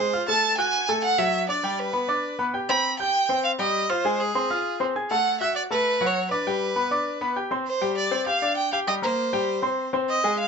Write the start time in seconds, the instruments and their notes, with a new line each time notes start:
Already playing: grand piano G#3, violin C5
0.00 grand piano G#4 G#5
0.13 grand piano F4 F5 F6
0.28 grand piano A3 A4 A5, violin A5
0.58 grand piano F#4 F#5 F#6, violin G#5
0.89 grand piano A3 A4 A5
1.04 violin F#5
1.18 grand piano F#3 F#4 F#5, violin E5
1.49 grand piano D4 D5 D6, violin D5
1.63 grand piano G3 G4 G5
1.79 violin B4
1.93 grand piano B3 B4 B5
2.08 grand piano D4 D5 D6
2.39 grand piano B3 B4 B5
2.54 grand piano G4 G5 G6
2.69 grand piano C4 C5 G5, violin B5
2.99 grand piano G4 G5 G6, violin G5
3.29 grand piano C4 C5 C6
3.44 violin F5
3.59 grand piano G3 G4 G5, violin D#5
3.90 grand piano F4 F5 F6, violin C5
4.05 grand piano G#3 G#4 G#5
4.20 violin G#4
4.35 grand piano C4 C5 C6
4.50 grand piano F4 F5 F6
4.80 grand piano C4 C5 C6
4.96 grand piano G#4 G#5 G#6
5.11 grand piano A3 A4 A5, violin F#5
5.41 grand piano F#4 F#5 F#6, violin E5
5.56 violin D5
5.70 grand piano A3 A4 A5, violin B4
6.01 grand piano F#3 F#4 F#5
6.06 violin C#5
6.31 grand piano D4 D5 D6, violin B4
6.47 grand piano G3 G4 G5
6.76 grand piano B3 B4 B5
6.91 grand piano D4 D5 D6
7.21 grand piano B3 B4 B5
7.36 grand piano G4 G5 G6
7.51 grand piano C4 C5 C6
7.67 violin C5
7.81 grand piano G3 G4 G5
7.98 violin D5
8.11 grand piano C4 C5 C6
8.27 grand piano G4 G5 G6, violin F5
8.42 grand piano D4 D5 D6
8.57 violin G5
8.72 grand piano G4 G5 G6, violin F5
8.87 grand piano G3 G4 G5, violin D#5
9.02 grand piano A#3 A#4 A#5, violin C5
9.33 grand piano G3 G4 G5
9.62 grand piano C4 C5 C6
9.93 grand piano C4 C5 C6
10.09 violin D#5
10.24 grand piano G#3 G#4 G#5
10.39 violin F5